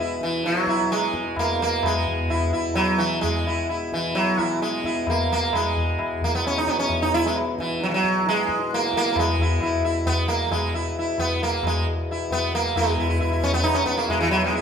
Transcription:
Already playing: harmonium E2 B2
0.00 sitar E4
0.21 sitar E3, tabla ke
0.44 sitar F#3, tabla te
0.55 tabla te
0.67 sitar E4, tabla ke
0.79 tabla te
0.90 sitar G#3, tabla te
1.02 tabla te
1.14 tabla ke
1.24 tabla te
1.36 sitar A#3, tabla na, tabla ge
1.59 sitar A#3, tabla te
1.83 sitar G#3, tabla na, tabla ge
2.07 tabla ge
2.30 sitar E4, tabla na, tabla ge
2.53 sitar E4, tabla ge
2.75 sitar F#3, tabla na
2.98 sitar E3, tabla te
3.21 sitar G#3, tabla tin, tabla ge
3.47 sitar E4, tabla na
3.69 sitar E4, tabla na
3.93 sitar E3, tabla ke
4.15 sitar F#3, tabla na
4.38 sitar E4, tabla ke
4.43 sitar E3
4.62 sitar G#3, tabla te
4.73 tabla te
4.84 sitar E4, tabla ke
4.96 tabla te
5.07 sitar A#3, tabla na, tabla ge
5.30 sitar A#3, tabla te
5.52 harmonium E2 B2, sitar G#3, tabla na, tabla ge
5.77 tabla ge
5.99 tabla na, tabla ge
6.21 sitar A#3, tabla ge
6.35 sitar B3
6.45 sitar C#4, tabla na
6.58 sitar D#4
6.67 sitar B3, tabla ke
6.78 sitar C#4, tabla te
6.89 tabla tin, tabla ge
7.02 sitar D#4
7.13 sitar E4, tabla na
7.26 sitar G#3
7.36 tabla na
7.59 sitar E3, tabla ke
7.80 sitar F#3, tabla te
7.89 sitar E3
7.93 sitar F#3, tabla te
8.04 tabla ke
8.15 tabla te
8.26 sitar G#3, tabla te
8.37 tabla te
8.49 tabla ke
8.59 tabla te
8.71 sitar A#3, tabla te
8.82 tabla te
8.93 sitar A#3, tabla ke
9.05 tabla te
9.12 sitar A#3, tabla na, tabla ge
9.19 sitar G#3
9.38 sitar E4, tabla ge
9.61 sitar E4, tabla na, tabla ge
9.83 sitar E4, tabla ge
10.06 sitar B3, tabla tin, tabla ge
10.28 sitar A#3, tabla te
10.47 sitar A#3
10.51 sitar G#3, tabla na, tabla ge
10.74 sitar E4
10.99 sitar E4
11.18 sitar B3, tabla tin, tabla ge
11.40 sitar A#3, tabla te
11.63 sitar G#3, tabla na, tabla ge
12.11 sitar E4
12.31 sitar B3, tabla tin, tabla ge
12.53 sitar A#3, tabla te
12.75 harmonium E2 B2, sitar G#3 E4, tabla na, tabla ge
12.98 sitar E4, tabla ge
13.09 sitar E4
13.20 sitar E4, tabla na, tabla ge
13.31 sitar E4
13.43 sitar C#4, tabla ge
13.54 sitar B3
13.63 sitar D#4, tabla na
13.74 sitar C#4
13.86 sitar B3, tabla ke
13.97 sitar A#3, tabla te
14.09 sitar G#3, tabla tin, tabla ge
14.21 sitar E3
14.31 sitar F#3, tabla na
14.44 sitar G#3
14.52 sitar E4, tabla te

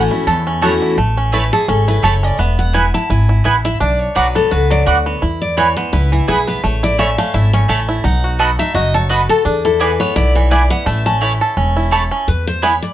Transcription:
Already playing: steel-string acoustic guitar A2 E3 A3 C#4, five-string banjo A3 C#4
0.11 steel-string acoustic guitar C#4 F#4, five-string banjo E4
0.27 upright bass E2, steel-string acoustic guitar E2, five-string banjo A4
0.47 five-string banjo C#4
0.62 steel-string acoustic guitar E3 A3 C#4 F#4, mandolin A3 E4 C#5 F#5, five-string banjo A4
0.82 five-string banjo E4
0.98 upright bass A1, five-string banjo A3
1.17 five-string banjo C#4
1.32 mandolin A3 E4 C#5 A5, five-string banjo E4, steel-string acoustic guitar B4
1.53 steel-string acoustic guitar G#4, five-string banjo A4
1.68 upright bass G#1, five-string banjo C#4, steel-string acoustic guitar A4
1.88 five-string banjo E4, steel-string acoustic guitar B4
2.03 upright bass F#1, mandolin A3 E4 C#5 A5, five-string banjo A4, steel-string acoustic guitar C#5
2.23 five-string banjo C#4, steel-string acoustic guitar D5
2.39 upright bass E1, five-string banjo B3, steel-string acoustic guitar E5
2.59 steel-string acoustic guitar F#5
2.73 mandolin B3 E4 B4 G#5, five-string banjo E4, steel-string acoustic guitar G#5
2.94 five-string banjo E4, steel-string acoustic guitar A5
3.10 upright bass G#1, five-string banjo E4, steel-string acoustic guitar G#5
3.29 five-string banjo E4
3.44 upright bass A1, mandolin B3 E4 B4 G#5, five-string banjo E4
3.65 five-string banjo E4, steel-string acoustic guitar E5
3.80 upright bass B1, five-string banjo D4, steel-string acoustic guitar D5
4.00 steel-string acoustic guitar C#5
4.15 upright bass B1, five-string banjo F#3, mandolin B3 F#4 D5 F#5, steel-string acoustic guitar B4
4.35 five-string banjo B3, steel-string acoustic guitar A4
4.51 upright bass C#2, five-string banjo F#4, steel-string acoustic guitar B4
4.70 five-string banjo F#3, steel-string acoustic guitar D5
4.86 upright bass D2, mandolin B3 F#4 D5 F#5, five-string banjo F#4
5.06 five-string banjo B3
5.22 upright bass E2, five-string banjo E4
5.42 steel-string acoustic guitar D5
5.57 five-string banjo E3, mandolin B3 E4 B4 G#5, steel-string acoustic guitar C#5
5.77 five-string banjo B3, steel-string acoustic guitar C5
5.93 upright bass C#2, five-string banjo E4, steel-string acoustic guitar B4
6.12 five-string banjo E3, steel-string acoustic guitar E4
6.28 upright bass B1, mandolin B3 E4 B4 G#5, five-string banjo E4, steel-string acoustic guitar G#4
6.47 five-string banjo B3, steel-string acoustic guitar B4
6.64 upright bass A1, five-string banjo A3, steel-string acoustic guitar C#5
6.83 five-string banjo E4, steel-string acoustic guitar D5
6.98 mandolin A3 E4 C#5 A5, five-string banjo C#4, steel-string acoustic guitar E5
7.18 five-string banjo A3, steel-string acoustic guitar F5
7.34 upright bass G#1, five-string banjo E4, steel-string acoustic guitar E5
7.53 five-string banjo C#4, steel-string acoustic guitar C#5
7.68 upright bass A1, mandolin A3 E4 C#5 A5, five-string banjo A3
7.89 five-string banjo E4
8.04 upright bass B1, five-string banjo D#4, steel-string acoustic guitar F#5
8.24 five-string banjo F#4
8.39 mandolin B3 F#4 D#5 B5, five-string banjo A4
8.59 five-string banjo D#4, steel-string acoustic guitar E5
8.74 upright bass F#1, five-string banjo F#4, steel-string acoustic guitar D#5
8.94 five-string banjo A4, steel-string acoustic guitar C#5
9.09 mandolin B3 F#4 D#5 B5, five-string banjo F#4, steel-string acoustic guitar B4
9.29 steel-string acoustic guitar A4, five-string banjo A4
9.45 upright bass E2, five-string banjo D4, steel-string acoustic guitar G#4
9.65 five-string banjo E4, steel-string acoustic guitar A4
9.80 five-string banjo E3, mandolin B3 E4 D5 G#5, steel-string acoustic guitar B4
10.00 five-string banjo B3, steel-string acoustic guitar C#5
10.16 upright bass B1, five-string banjo E4, steel-string acoustic guitar D5
10.35 five-string banjo E3, steel-string acoustic guitar C#5
10.51 mandolin B3 E4 D5 G#5, five-string banjo E4, steel-string acoustic guitar D5
10.70 five-string banjo B3, steel-string acoustic guitar F#5
10.86 upright bass A1, five-string banjo A3, steel-string acoustic guitar E5
11.06 five-string banjo C#4, steel-string acoustic guitar A5
11.21 mandolin A3 E4 C#5 A5, five-string banjo E4
11.41 five-string banjo A4
11.57 upright bass E1, five-string banjo C#4
11.77 five-string banjo E4
11.91 mandolin A3 E4 C#5 A5, five-string banjo A4
12.11 five-string banjo C#4
12.28 upright bass E2, steel-string acoustic guitar B4
12.47 steel-string acoustic guitar C5
12.62 mandolin B3 E4 B4 G#5, five-string banjo B3 E4, steel-string acoustic guitar C#5
12.82 steel-string acoustic guitar D5

